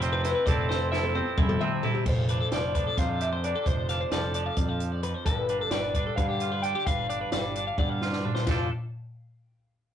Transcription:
0.00 0.33 F1 loud
0.00 0.47 F2 medium
0.00 0.47 C3 medium
0.00 0.91 F3 medium
0.00 0.47 C4 medium
0.00 0.24 E4 medium
0.00 0.48 G4 medium
0.00 0.25 C5 medium
0.00 0.12 C5 medium
0.00 closed hi-hat medium
0.13 0.24 B4 medium
0.24 0.45 E4 medium
0.24 0.46 B4 medium
0.24 0.34 C5 medium
0.24 snare soft
0.24 closed hi-hat medium
0.35 0.46 B4 medium
0.46 1.20 F1 medium
0.46 2.06 F2 medium
0.46 0.69 C4 medium
0.46 0.91 E4 medium
0.46 1.57 A4 medium
0.46 0.69 D5 medium
0.46 kick loud
0.46 closed hi-hat medium
0.69 1.14 C4 medium
0.69 0.91 C5 medium
0.69 snare medium
0.92 2.52 F3 medium
0.92 1.37 E4 medium
0.92 1.03 E5 medium
0.92 snare medium
1.03 1.15 A4 medium
1.03 high tom medium
1.15 1.60 C4 medium
1.15 1.38 C5 medium
1.15 high tom medium
1.38 1.56 F1 medium
1.38 1.83 E4 medium
1.38 1.49 E5 medium
1.38 kick loud
1.38 mid tom medium
1.49 1.60 A4 medium
1.49 mid tom medium
1.61 2.06 C3 medium
1.61 2.04 C4 medium
1.61 1.83 E5 medium
1.61 mid tom medium
1.83 2.04 E4 medium
1.83 1.94 A4 medium
1.83 floor tom medium
1.94 2.06 G4 medium
1.94 floor tom medium
2.05 2.43 F1 medium
2.05 3.65 F2 medium
2.05 2.29 A4 medium
2.05 2.54 C5 medium
2.05 kick loud
2.05 crash medium
2.28 2.76 D4 soft
2.28 2.40 B4 medium
2.28 closed hi-hat medium
2.40 2.52 A4 medium
2.52 2.89 F1 medium
2.52 4.12 F3 medium
2.52 2.74 B4 medium
2.52 2.95 D5 medium
2.52 snare loud
2.52 closed hi-hat medium
2.75 3.44 D4 medium
2.75 2.86 B4 medium
2.75 kick medium
2.75 closed hi-hat medium
2.87 2.98 A4 medium
2.97 3.53 F2 medium
2.97 3.67 C3 medium
2.97 3.09 C5 medium
2.97 3.21 F5 loud
2.97 kick loud
2.97 snare soft
2.97 closed hi-hat medium
3.09 3.32 A4 medium
3.21 3.70 G4 medium
3.21 3.28 E5 medium
3.21 closed hi-hat medium
3.33 3.44 C5 medium
3.44 3.90 D4 medium
3.44 3.55 B4 medium
3.44 3.67 D5 medium
3.44 closed hi-hat medium
3.55 3.67 A4 medium
3.66 4.03 F1 medium
3.66 5.03 F2 medium
3.66 3.89 C5 medium
3.66 4.12 C5 medium
3.66 kick loud
3.66 closed hi-hat medium
3.89 4.36 D4 soft
3.89 4.01 F5 medium
3.89 snare soft
3.89 closed hi-hat medium
4.01 4.12 C5 medium
4.11 4.49 F1 medium
4.11 5.72 F3 medium
4.11 5.00 A4 medium
4.11 4.34 D5 medium
4.11 snare loud
4.11 closed hi-hat medium
4.34 5.49 D4 soft
4.34 4.46 D5 medium
4.34 closed hi-hat medium
4.46 4.57 F5 medium
4.56 5.13 F2 medium
4.56 4.69 D5 medium
4.56 kick loud
4.56 closed hi-hat medium
4.69 4.92 F5 medium
4.80 closed hi-hat medium
4.92 5.03 D5 medium
5.03 5.26 F2 medium
5.03 5.14 B4 medium
5.03 closed hi-hat soft
5.14 5.26 C5 medium
5.25 5.63 G1 medium
5.25 6.84 G2 medium
5.25 5.49 A4 medium
5.25 5.73 B4 medium
5.25 kick loud
5.25 closed hi-hat medium
5.49 5.96 D4 medium
5.49 5.61 B4 medium
5.49 closed hi-hat medium
5.61 5.72 A4 medium
5.71 6.08 G1 medium
5.71 7.33 G3 medium
5.71 5.93 B4 medium
5.71 6.16 D5 medium
5.71 snare loud
5.71 closed hi-hat medium
5.94 6.65 D4 medium
5.94 6.06 B4 medium
5.94 kick medium
5.94 closed hi-hat medium
6.07 6.17 A4 medium
6.16 6.73 G2 medium
6.16 6.84 D3 medium
6.16 6.28 B4 medium
6.16 6.62 F5 medium
6.16 kick medium
6.16 closed hi-hat medium
6.29 6.52 G4 medium
6.40 6.90 F4 medium
6.40 closed hi-hat medium
6.52 6.64 B4 medium
6.62 7.09 D4 medium
6.62 6.75 A4 medium
6.62 6.84 G5 medium
6.62 closed hi-hat medium
6.75 6.87 G4 medium
6.86 7.24 G1 medium
6.86 8.45 G2 medium
6.86 7.09 B4 medium
6.86 7.97 F5 medium
6.86 kick medium
6.86 closed hi-hat medium
7.10 7.56 D4 soft
7.10 7.21 D5 medium
7.10 closed hi-hat medium
7.21 7.32 B4 medium
7.32 7.70 G1 medium
7.32 8.45 G3 medium
7.32 7.54 D5 medium
7.32 snare loud
7.32 closed hi-hat medium
7.55 8.24 D4 soft
7.55 7.67 D5 medium
7.55 closed hi-hat medium
7.67 7.78 F5 medium
7.78 8.34 G2 medium
7.78 8.45 D3 medium
7.78 7.90 D5 medium
7.78 kick loud
7.78 high tom medium
7.90 8.12 F5 medium
8.02 8.45 F4 medium
8.02 snare medium
8.12 8.24 D5 medium
8.12 snare medium
8.24 8.45 D4 medium
8.24 8.35 B4 medium
8.24 floor tom medium
8.35 8.47 C5 medium
8.35 snare medium
8.46 8.69 F1 medium
8.46 8.68 F2 medium
8.46 8.68 F3 medium
8.46 8.69 D4 medium
8.46 8.68 F4 medium
8.46 8.69 G4 soft
8.46 kick medium
8.46 snare medium
8.46 ride bell medium
8.51 8.70 A4 medium

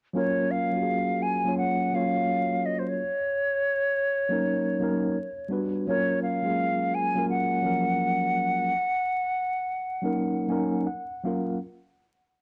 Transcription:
0.13 0.64 F#3 medium
0.13 0.64 A#3 medium
0.13 0.64 C#4 medium
0.13 0.65 F4 medium
0.13 0.65 A#4 loud
0.13 0.52 C#5 medium
0.51 1.24 F5 medium
0.72 1.32 F#3 medium
0.72 1.33 A#3 medium
0.72 1.33 C#4 medium
0.72 1.34 F4 medium
0.72 0.79 F#4 medium
0.83 1.37 G#4 medium
1.22 1.57 G#5 loud
1.45 1.88 F#3 medium
1.45 1.89 A#3 medium
1.45 1.89 C#4 medium
1.45 1.89 F4 medium
1.45 1.90 C#5 medium
1.58 1.96 F#5 loud
1.92 3.00 F#3 medium
1.92 3.00 A#3 medium
1.92 3.01 C#4 medium
1.92 3.01 F4 medium
1.92 3.01 C#5 medium
1.92 2.67 F5 loud
2.66 2.80 D#5 medium
2.79 2.90 C5 medium
2.88 5.50 C#5 loud
4.29 4.73 F#3 medium
4.29 4.73 A#3 medium
4.29 4.74 C#4 medium
4.29 4.74 D#4 medium
4.29 4.75 A#4 medium
4.80 5.15 F#3 medium
4.80 5.15 A#3 medium
4.80 5.16 C#4 medium
4.80 5.16 D#4 medium
4.80 5.17 A#4 medium
5.49 5.82 G3 medium
5.49 5.82 B3 medium
5.49 5.83 D4 medium
5.49 5.83 F#4 medium
5.49 5.84 B4 medium
5.87 6.36 F#3 medium
5.87 6.37 A#3 medium
5.87 6.37 C#4 medium
5.87 6.37 F4 medium
5.87 6.38 A#4 loud
5.87 6.20 C#5 medium
6.23 6.96 F5 loud
6.43 7.03 F#3 medium
6.43 6.48 G#3 soft
6.43 7.04 C#4 medium
6.43 7.05 F4 medium
6.43 7.05 G#4 medium
6.50 7.07 A#3 medium
6.95 7.29 G#5 loud
7.15 7.59 F#3 medium
7.15 7.59 A#3 medium
7.15 7.60 C#4 medium
7.15 7.60 F4 medium
7.15 7.61 A#4 medium
7.30 10.82 F#5 loud
7.62 8.71 F3 medium
7.62 8.70 F#3 medium
7.62 8.71 A#3 medium
7.62 8.71 C#4 medium
7.62 8.72 A#4 medium
10.02 10.45 F#3 medium
10.02 10.46 A#3 medium
10.02 10.46 C#4 medium
10.02 10.47 D#4 medium
10.02 10.47 A#4 medium
10.48 10.85 F#3 medium
10.48 10.85 A#3 medium
10.48 10.86 C#4 medium
10.48 10.86 D#4 medium
10.48 10.87 A#4 medium
10.48 10.83 G#5 medium
10.87 11.19 F#5 medium
11.23 11.55 F#3 medium
11.23 11.55 A#3 medium
11.23 11.56 C#4 medium
11.23 11.56 F4 medium
11.23 11.56 A#4 medium
11.23 11.56 F5 medium

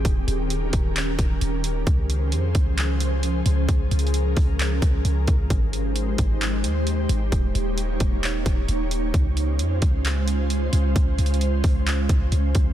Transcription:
0.00 1.83 G4 medium
0.05 0.27 D#1 loud
0.05 1.85 D#3 medium
0.05 1.85 C#4 medium
0.05 1.85 A#4 medium
0.05 kick loud
0.05 closed hi-hat medium
0.28 0.71 D#1 loud
0.28 closed hi-hat medium
0.50 closed hi-hat medium
0.73 1.17 D#1 loud
0.73 kick medium
0.73 closed hi-hat medium
0.96 clap loud
0.96 closed hi-hat medium
1.19 1.40 D#1 loud
1.19 kick medium
1.19 closed hi-hat medium
1.41 1.85 D#1 loud
1.41 closed hi-hat medium
1.64 closed hi-hat medium
1.87 2.34 C#2 loud
1.87 5.47 F3 medium
1.87 5.47 C#4 medium
1.87 5.47 G#4 medium
1.87 3.67 C5 medium
1.87 kick loud
1.87 closed hi-hat medium
2.10 closed hi-hat medium
2.32 2.54 F2 loud
2.32 closed hi-hat medium
2.55 3.42 C#2 loud
2.55 kick medium
2.55 closed hi-hat medium
2.78 clap loud
2.78 closed hi-hat medium
3.00 closed hi-hat medium
3.23 closed hi-hat medium
3.46 3.68 C#2 loud
3.46 closed hi-hat medium
3.68 3.90 C#2 loud
3.68 5.48 A#4 medium
3.68 kick loud
3.68 closed hi-hat medium
3.91 4.35 C#2 loud
3.91 closed hi-hat medium
3.99 closed hi-hat medium
4.07 closed hi-hat soft
4.14 closed hi-hat medium
4.37 4.80 C#2 loud
4.37 kick medium
4.37 open hi-hat medium
4.60 clap loud
4.60 closed hi-hat medium
4.82 5.04 C#2 loud
4.82 kick medium
4.82 closed hi-hat medium
5.05 5.27 C#2 loud
5.05 closed hi-hat medium
5.28 5.50 C#2 loud
5.28 kick medium
5.28 closed hi-hat medium
5.50 6.16 G#1 loud
5.50 7.30 G#3 medium
5.50 7.30 D#4 medium
5.50 9.10 G4 medium
5.50 7.30 C5 loud
5.50 kick loud
5.50 closed hi-hat medium
5.73 closed hi-hat medium
5.96 closed hi-hat medium
6.18 6.65 G#1 loud
6.18 kick medium
6.18 closed hi-hat medium
6.41 clap loud
6.41 closed hi-hat medium
6.64 7.07 D#2 loud
6.64 closed hi-hat medium
6.87 closed hi-hat medium
7.09 7.31 G#1 loud
7.09 closed hi-hat medium
7.32 7.54 D#1 loud
7.32 9.12 A#3 medium
7.32 9.12 D#4 medium
7.32 9.12 C#5 medium
7.32 kick loud
7.32 closed hi-hat medium
7.55 7.99 D#1 loud
7.55 closed hi-hat medium
7.78 closed hi-hat medium
8.00 8.44 D#1 loud
8.00 kick medium
8.00 closed hi-hat medium
8.23 clap loud
8.23 closed hi-hat medium
8.46 8.68 D#1 loud
8.46 kick medium
8.46 closed hi-hat medium
8.68 9.12 D#1 loud
8.68 closed hi-hat medium
8.91 closed hi-hat medium
9.14 9.61 C#2 loud
9.14 12.73 G#3 medium
9.14 12.73 C#4 medium
9.14 12.73 F4 medium
9.14 12.73 C5 medium
9.14 kick loud
9.14 closed hi-hat medium
9.37 closed hi-hat medium
9.59 9.81 F2 loud
9.59 closed hi-hat medium
9.82 10.69 C#2 loud
9.82 kick medium
9.82 closed hi-hat medium
10.05 clap loud
10.05 closed hi-hat medium
10.28 closed hi-hat medium
10.50 closed hi-hat medium
10.73 10.95 C#2 loud
10.73 closed hi-hat medium
10.96 11.18 C#2 loud
10.96 kick loud
10.96 closed hi-hat medium
11.19 11.62 C#2 loud
11.19 closed hi-hat medium
11.26 closed hi-hat medium
11.34 closed hi-hat soft
11.41 closed hi-hat medium
11.64 12.08 C#2 loud
11.64 kick medium
11.64 open hi-hat medium
11.87 clap loud
11.87 closed hi-hat medium
12.09 12.31 C#2 loud
12.09 kick medium
12.09 closed hi-hat medium
12.32 12.54 C#2 loud
12.32 closed hi-hat medium
12.55 12.73 C#2 loud
12.55 kick medium
12.55 closed hi-hat medium

